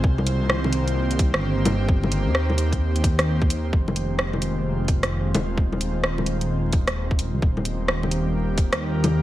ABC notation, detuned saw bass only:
X:1
M:4/4
L:1/16
Q:"Swing 16ths" 1/4=130
K:Fm
V:1 name="Detuned saw bass" clef=bass
C,,8- C,,3 G,,,4- G,,,- | G,,,3 E,,8- E,,2 E,,3 | F,,,12- F,,,2 E,,,2- | E,,,12- E,,,3 C,, |
E,,,8- E,,,3 E,,4- E,, |]